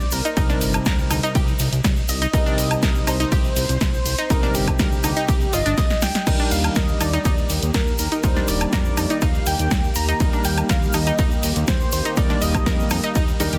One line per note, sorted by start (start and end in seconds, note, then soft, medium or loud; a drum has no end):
0.00 0.11 D5 medium
0.00 0.14 D5 medium
0.00 shaker soft
0.11 0.21 C2 medium
0.11 0.58 A#4 medium
0.11 0.61 A#4 medium
0.11 open hi-hat loud
0.11 shaker loud
0.25 0.30 D#4 medium
0.25 0.30 D#5 medium
0.25 closed hi-hat medium
0.25 shaker soft
0.37 0.55 C2 loud
0.37 1.70 C3 medium
0.37 1.70 G3 medium
0.37 1.70 C4 medium
0.37 1.70 D#4 medium
0.37 0.42 D#4 medium
0.37 1.70 A#4 medium
0.37 0.42 D#5 medium
0.37 kick loud
0.37 closed hi-hat medium
0.37 ride medium
0.37 shaker medium
0.49 0.57 D4 medium
0.49 0.57 D5 medium
0.49 snare soft
0.49 shaker soft
0.61 0.79 G1 medium
0.61 open hi-hat loud
0.61 shaker medium
0.73 closed hi-hat medium
0.73 high woodblock medium
0.73 shaker soft
0.85 1.04 D2 loud
0.85 0.94 A#4 medium
0.85 0.94 A#5 medium
0.85 kick loud
0.85 snare loud
0.85 closed hi-hat soft
0.85 ride medium
0.85 shaker medium
0.99 shaker soft
1.11 1.20 D2 medium
1.11 1.16 D#4 medium
1.11 1.16 D#5 medium
1.11 open hi-hat loud
1.11 high woodblock medium
1.11 shaker medium
1.23 1.28 D#4 loud
1.23 1.28 D#5 medium
1.23 closed hi-hat medium
1.23 shaker soft
1.35 1.53 C2 loud
1.35 1.44 G4 medium
1.35 1.44 G5 medium
1.35 kick loud
1.35 closed hi-hat medium
1.35 ride medium
1.35 shaker medium
1.48 shaker soft
1.59 1.69 C2 medium
1.59 open hi-hat loud
1.59 shaker loud
1.73 1.81 C2 medium
1.73 closed hi-hat medium
1.73 shaker soft
1.84 2.02 C2 loud
1.84 kick loud
1.84 snare loud
1.84 closed hi-hat medium
1.84 ride medium
1.84 shaker medium
1.96 shaker soft
2.08 2.27 C2 medium
2.08 3.09 D#5 loud
2.08 3.03 D#5 medium
2.08 open hi-hat loud
2.08 shaker medium
2.22 2.26 D#4 medium
2.22 2.26 D#5 medium
2.22 closed hi-hat medium
2.22 shaker soft
2.33 2.43 C2 medium
2.33 3.67 C3 medium
2.33 3.67 G3 medium
2.33 3.67 C4 medium
2.33 3.67 D#4 medium
2.33 2.39 D#4 medium
2.33 3.67 A#4 medium
2.33 2.39 D#5 medium
2.33 kick loud
2.33 closed hi-hat medium
2.33 ride medium
2.33 shaker medium
2.46 2.54 D4 medium
2.46 2.54 D5 medium
2.46 shaker soft
2.58 2.76 C2 loud
2.58 open hi-hat loud
2.58 shaker medium
2.71 closed hi-hat medium
2.71 high woodblock medium
2.71 shaker soft
2.82 3.01 C2 loud
2.82 2.91 A#4 medium
2.82 2.91 A#5 medium
2.82 kick loud
2.82 snare loud
2.82 closed hi-hat medium
2.82 ride medium
2.82 shaker soft
2.95 shaker soft
3.07 3.25 C2 medium
3.07 3.12 D#4 medium
3.07 4.26 C5 loud
3.07 4.32 C5 loud
3.07 3.12 D#5 medium
3.07 open hi-hat loud
3.07 high woodblock medium
3.07 shaker loud
3.20 3.25 D#4 loud
3.20 3.25 D#5 medium
3.20 closed hi-hat medium
3.20 shaker soft
3.32 3.50 C2 loud
3.32 3.40 G4 medium
3.32 3.40 G5 medium
3.32 kick loud
3.32 closed hi-hat medium
3.32 ride medium
3.32 shaker medium
3.44 shaker soft
3.56 3.66 C2 loud
3.56 open hi-hat loud
3.56 shaker medium
3.69 3.78 C2 medium
3.69 closed hi-hat medium
3.69 shaker soft
3.81 3.99 C2 medium
3.81 kick loud
3.81 snare loud
3.81 closed hi-hat medium
3.81 ride medium
3.81 shaker medium
3.94 shaker soft
4.05 4.15 C2 medium
4.05 open hi-hat loud
4.05 shaker medium
4.18 4.23 D#4 medium
4.18 4.23 D#5 medium
4.18 closed hi-hat medium
4.18 shaker soft
4.30 4.48 C2 loud
4.30 5.63 C3 medium
4.30 5.63 G3 medium
4.30 5.63 C4 medium
4.30 5.63 D#4 medium
4.30 4.35 D#4 medium
4.30 4.56 A#4 loud
4.30 5.63 A#4 medium
4.30 4.53 A#4 loud
4.30 4.35 D#5 medium
4.30 kick loud
4.30 closed hi-hat medium
4.30 ride medium
4.30 shaker medium
4.43 4.51 D4 medium
4.43 4.51 D5 medium
4.43 snare soft
4.43 shaker soft
4.55 4.73 G1 loud
4.55 5.55 G4 loud
4.55 5.49 G4 loud
4.55 open hi-hat loud
4.55 shaker medium
4.67 kick medium
4.67 closed hi-hat medium
4.67 high woodblock medium
4.67 shaker soft
4.79 4.97 D2 loud
4.79 4.88 A#4 medium
4.79 4.88 A#5 medium
4.79 kick loud
4.79 snare loud
4.79 closed hi-hat medium
4.79 ride medium
4.79 shaker soft
4.92 shaker soft
5.04 5.13 D2 loud
5.04 5.09 D#4 medium
5.04 5.09 D#5 medium
5.04 open hi-hat loud
5.04 high woodblock medium
5.04 shaker loud
5.16 5.21 D#4 loud
5.16 5.21 D#5 medium
5.16 closed hi-hat medium
5.16 shaker soft
5.28 5.46 C2 medium
5.28 5.37 G4 medium
5.28 5.37 G5 medium
5.28 kick loud
5.28 closed hi-hat medium
5.28 ride medium
5.28 shaker medium
5.41 shaker soft
5.53 5.62 G1 medium
5.53 5.62 F4 medium
5.53 6.04 D#5 loud
5.53 5.99 D#5 loud
5.53 5.62 F5 medium
5.53 open hi-hat loud
5.53 shaker loud
5.66 5.74 G1 medium
5.66 5.74 D4 loud
5.66 5.74 D5 medium
5.66 closed hi-hat medium
5.66 shaker soft
5.77 5.96 C2 loud
5.77 5.90 D#5 loud
5.77 5.90 D#6 medium
5.77 kick loud
5.77 snare medium
5.77 closed hi-hat medium
5.77 ride medium
5.77 shaker medium
5.90 snare medium
5.90 shaker soft
6.01 6.11 C2 medium
6.01 6.48 G5 loud
6.01 6.53 G5 loud
6.01 snare medium
6.01 open hi-hat loud
6.01 shaker medium
6.14 snare medium
6.14 closed hi-hat medium
6.14 shaker soft
6.27 6.36 D#2 medium
6.27 13.58 D#3 medium
6.27 7.60 G3 medium
6.27 13.58 A#3 medium
6.27 7.60 D4 medium
6.27 6.32 D#4 medium
6.27 7.60 D#4 medium
6.27 13.58 G4 medium
6.27 7.60 A#4 medium
6.27 6.32 D#5 medium
6.27 kick loud
6.27 closed hi-hat medium
6.27 crash medium
6.27 ride medium
6.27 shaker medium
6.38 6.47 D4 medium
6.38 6.48 D5 medium
6.38 shaker soft
6.51 6.69 D#2 medium
6.51 6.76 F5 loud
6.51 6.74 F5 loud
6.51 open hi-hat loud
6.51 shaker medium
6.64 closed hi-hat medium
6.64 high woodblock medium
6.64 shaker soft
6.75 6.94 D#2 loud
6.75 6.85 A#4 medium
6.75 7.02 D#5 loud
6.75 6.99 D#5 loud
6.75 6.85 A#5 medium
6.75 kick loud
6.75 snare loud
6.75 closed hi-hat medium
6.75 ride medium
6.75 shaker medium
6.88 shaker soft
7.01 7.19 D#2 medium
7.01 7.06 D#4 medium
7.01 7.50 D5 loud
7.01 7.47 D5 loud
7.01 7.06 D#5 medium
7.01 open hi-hat loud
7.01 high woodblock medium
7.01 shaker loud
7.13 7.18 D#4 loud
7.13 7.18 D#5 medium
7.13 closed hi-hat medium
7.13 shaker soft
7.25 7.43 D#2 loud
7.25 7.34 D#4 loud
7.25 7.34 D#5 medium
7.25 kick loud
7.25 closed hi-hat medium
7.25 ride medium
7.25 shaker medium
7.38 shaker soft
7.49 7.59 D#2 medium
7.49 open hi-hat loud
7.49 shaker medium
7.62 7.71 D#2 loud
7.62 closed hi-hat medium
7.62 shaker soft
7.74 7.92 D#2 medium
7.74 7.97 A#4 medium
7.74 kick loud
7.74 snare loud
7.74 closed hi-hat medium
7.74 ride medium
7.74 shaker soft
7.87 shaker soft
7.98 8.08 D#2 medium
7.98 8.25 A#4 medium
7.98 8.22 A#4 medium
7.98 open hi-hat loud
7.98 shaker medium
8.12 8.17 D#4 medium
8.12 8.17 D#5 medium
8.12 closed hi-hat medium
8.12 shaker soft
8.23 8.41 D#2 loud
8.23 9.57 G3 medium
8.23 9.57 D4 medium
8.23 9.57 D#4 medium
8.23 8.29 D#4 medium
8.23 9.57 A#4 medium
8.23 8.50 C5 loud
8.23 8.46 C5 loud
8.23 8.29 D#5 medium
8.23 kick loud
8.23 closed hi-hat medium
8.23 ride medium
8.23 shaker medium
8.36 8.44 D4 medium
8.36 8.44 D5 medium
8.36 snare soft
8.36 shaker soft
8.48 8.66 D#1 loud
8.48 9.18 D5 loud
8.48 9.23 D5 loud
8.48 open hi-hat loud
8.48 shaker medium
8.61 closed hi-hat medium
8.61 high woodblock medium
8.61 shaker soft
8.72 8.91 F2 loud
8.72 8.81 A#4 medium
8.72 8.81 A#5 medium
8.72 kick loud
8.72 snare loud
8.72 closed hi-hat medium
8.72 ride medium
8.72 shaker medium
8.85 shaker soft
8.97 9.07 F2 medium
8.97 9.03 D#4 medium
8.97 9.03 D#5 medium
8.97 open hi-hat loud
8.97 high woodblock medium
8.97 shaker loud
9.10 9.15 D#4 loud
9.10 9.15 D#5 medium
9.10 closed hi-hat medium
9.10 shaker soft
9.21 9.40 D#2 loud
9.21 9.31 D#4 loud
9.21 9.31 D#5 medium
9.21 9.48 F5 loud
9.21 9.45 F5 loud
9.21 kick loud
9.21 closed hi-hat medium
9.21 ride medium
9.21 shaker medium
9.34 shaker soft
9.46 9.56 D#2 medium
9.46 9.97 G5 loud
9.46 9.92 G5 loud
9.46 open hi-hat loud
9.46 shaker medium
9.59 9.68 D#2 medium
9.59 closed hi-hat medium
9.59 shaker soft
9.71 9.89 D#2 loud
9.71 kick loud
9.71 snare loud
9.71 closed hi-hat medium
9.71 ride medium
9.71 shaker medium
9.84 shaker soft
9.95 10.14 D#2 medium
9.95 10.41 A#5 loud
9.95 10.44 A#5 loud
9.95 open hi-hat loud
9.95 shaker loud
10.08 10.13 D#4 medium
10.08 10.13 D#5 medium
10.08 closed hi-hat medium
10.08 shaker soft
10.20 10.30 D#2 loud
10.20 11.54 G3 medium
10.20 11.54 A#3 medium
10.20 11.54 D#4 medium
10.20 10.26 D#4 medium
10.20 11.54 A#4 medium
10.20 10.26 D#5 medium
10.20 kick loud
10.20 closed hi-hat medium
10.20 ride medium
10.20 shaker medium
10.33 10.41 D4 medium
10.33 10.41 D5 medium
10.33 shaker soft
10.44 10.63 D#2 loud
10.44 10.68 G5 loud
10.44 10.56 G5 loud
10.44 open hi-hat loud
10.44 shaker loud
10.57 closed hi-hat medium
10.57 high woodblock medium
10.57 shaker soft
10.69 10.87 D#2 loud
10.69 10.78 A#4 medium
10.69 10.92 F5 loud
10.69 10.96 F5 loud
10.69 10.78 A#5 medium
10.69 kick loud
10.69 snare loud
10.69 closed hi-hat soft
10.69 ride medium
10.69 shaker medium
10.83 shaker soft
10.93 11.12 D#2 medium
10.93 10.99 D#4 medium
10.93 11.43 D#5 loud
10.93 10.99 D#5 medium
10.93 11.40 D#5 medium
10.93 open hi-hat loud
10.93 high woodblock medium
10.93 shaker loud
11.06 11.12 D#4 loud
11.06 11.12 D#5 medium
11.06 closed hi-hat medium
11.06 shaker soft
11.18 11.37 D#2 loud
11.18 11.27 D#4 loud
11.18 11.27 D#5 medium
11.18 kick loud
11.18 closed hi-hat medium
11.18 ride medium
11.18 shaker medium
11.31 shaker soft
11.43 11.53 D#2 medium
11.43 open hi-hat loud
11.43 shaker loud
11.56 11.65 D#2 loud
11.56 closed hi-hat medium
11.56 shaker soft
11.67 11.86 D#2 medium
11.67 11.91 C5 medium
11.67 kick loud
11.67 snare loud
11.67 closed hi-hat medium
11.67 ride medium
11.67 shaker medium
11.80 shaker soft
11.92 12.02 D#2 medium
11.92 12.19 C5 loud
11.92 12.15 C5 medium
11.92 open hi-hat loud
11.92 shaker loud
12.05 12.10 D#4 medium
12.05 12.10 D#5 medium
12.05 closed hi-hat medium
12.05 shaker soft
12.16 12.35 D#2 loud
12.16 13.38 G3 medium
12.16 13.38 A#3 medium
12.16 13.38 D#4 medium
12.16 12.22 D#4 medium
12.16 13.38 A#4 medium
12.16 12.40 D5 loud
12.16 12.43 D5 loud
12.16 12.22 D#5 medium
12.16 kick loud
12.16 closed hi-hat medium
12.16 ride medium
12.16 shaker medium
12.29 12.38 D4 medium
12.29 12.38 D5 medium
12.29 snare soft
12.29 shaker soft
12.41 12.60 D#1 medium
12.41 13.36 D#5 loud
12.41 13.40 D#5 loud
12.41 open hi-hat loud
12.41 shaker loud
12.54 kick medium
12.54 closed hi-hat medium
12.54 high woodblock medium
12.54 shaker soft
12.66 12.84 F2 loud
12.66 12.75 A#4 medium
12.66 12.75 A#5 medium
12.66 kick loud
12.66 snare loud
12.66 closed hi-hat soft
12.66 ride medium
12.66 shaker medium
12.80 shaker soft
12.90 13.00 F2 medium
12.90 12.96 D#4 medium
12.90 12.96 D#5 medium
12.90 open hi-hat loud
12.90 high woodblock medium
12.90 shaker loud
13.03 13.08 D#4 loud
13.03 13.08 D#5 medium
13.03 closed hi-hat medium
13.03 shaker soft
13.15 13.33 D#2 medium
13.15 13.24 D#4 loud
13.15 13.24 D#5 medium
13.15 kick loud
13.15 closed hi-hat medium
13.15 ride medium
13.15 shaker medium
13.28 shaker soft
13.40 13.49 D#2 medium
13.40 13.58 G3 medium
13.40 13.58 D4 medium
13.40 13.58 D#4 medium
13.40 13.49 D#4 medium
13.40 13.58 A#4 medium
13.40 13.49 D#5 medium
13.40 open hi-hat loud
13.40 shaker loud
13.52 13.58 D#2 medium
13.52 13.58 G4 medium
13.52 13.58 G5 medium
13.52 closed hi-hat medium
13.52 shaker soft